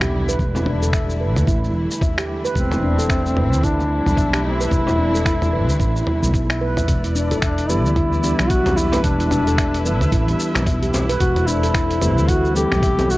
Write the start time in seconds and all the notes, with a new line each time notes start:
Already playing: B1 D3 E3 G3 B3 E4
0.01 G4, finger snap, mid tom, shaker
0.29 B4, shaker
0.39 E1 A3, kick, shaker
0.55 E4, frame drum, shaker
0.66 D4, mid tom
0.83 A4, shaker
0.93 E5, finger snap, kick, shaker
1.10 shaker
1.21 B4
1.36 D2, mid tom, shaker
1.47 A1 E4, kick, shaker
1.64 shaker
1.74 E1
1.91 shaker
2.01 E5, kick, mid tom, shaker
2.18 G4, finger snap, shaker
2.45 B4, shaker
2.55 E1 E3 G3 C4 E4, kick, shaker
2.71 E4, mid tom, frame drum, shaker
2.83 D4
2.99 A4, shaker
3.09 E5, finger snap, kick, shaker
3.26 shaker
3.37 B4, mid tom
3.52 D2, shaker
3.63 D4 E4, kick, shaker
3.79 frame drum, shaker
4.06 B1, mid tom, shaker
4.18 E5, kick, shaker
4.34 G4, finger snap, shaker
4.45 E4
4.61 B4, shaker
4.72 E1, kick, mid tom, shaker
4.87 E4, frame drum, shaker
4.99 D4
5.15 A4, shaker
5.26 E5, finger snap, kick, shaker
5.42 mid tom, shaker
5.53 B4
5.69 D2, shaker
5.80 A1 E4, kick, shaker
5.97 shaker
6.07 E4, mid tom
6.23 B1, shaker
6.34 E4, kick, shaker
6.50 E5, finger snap, shaker
6.61 B4
6.77 E5, mid tom, shaker
6.88 E1 E4 B4 D5, kick, closed hi-hat, shaker
7.04 E4, closed hi-hat, shaker
7.15 D4, shaker
7.31 A4, closed hi-hat, mid tom, shaker
7.42 D4 E5, finger snap, kick, closed hi-hat, shaker
7.58 closed hi-hat, shaker
7.68 E3 G3 B3 D4 E4 G4 B4, shaker
7.85 D2, shaker
7.96 E4, kick, closed hi-hat, mid tom, shaker
8.13 shaker
8.21 E3 G3 B3 D4, shaker
8.25 G4
8.39 B1, finger snap, shaker
8.50 F#4 E5, kick, closed hi-hat, shaker
8.66 G4, closed hi-hat, mid tom, frame drum, shaker
8.77 E4, shaker
8.92 B4, closed hi-hat, frame drum, shaker
9.04 E1 D4 E5, kick, closed hi-hat, shaker
9.20 E4, closed hi-hat, shaker
9.31 D4, mid tom, shaker
9.47 A4, closed hi-hat, shaker
9.58 E5, finger snap, kick, closed hi-hat, shaker
9.74 closed hi-hat, shaker
9.84 E3 G3 B3 D4 B4, shaker
10.01 D2, mid tom, shaker
10.12 A1 E4, kick, closed hi-hat, shaker
10.26 E3 G3 B3 D4, closed hi-hat, shaker
10.30 G4
10.40 shaker
10.55 B1, finger snap, closed hi-hat, frame drum, shaker
10.66 E5, kick, closed hi-hat, mid tom, shaker
10.82 G4, closed hi-hat, shaker
10.94 frame drum, shaker
11.09 B4, closed hi-hat, shaker
11.20 E1 C4 F#4 A4, kick, closed hi-hat, shaker
11.36 E4, closed hi-hat, mid tom, shaker
11.47 D4 E4, shaker
11.63 A4, closed hi-hat, shaker
11.74 E5, finger snap, kick, closed hi-hat, shaker
11.91 closed hi-hat, shaker
12.00 E3 G3 A3 C4 G4 B4, mid tom, shaker
12.18 D2, shaker
12.28 E4 F#4, kick, closed hi-hat, shaker
12.45 shaker
12.53 E3 G3 A3 C4 G4, shaker
12.57 A4
12.72 B1, finger snap, mid tom, shaker
12.83 E5, kick, closed hi-hat, shaker
12.99 G4, closed hi-hat, frame drum, shaker
13.10 F#4, shaker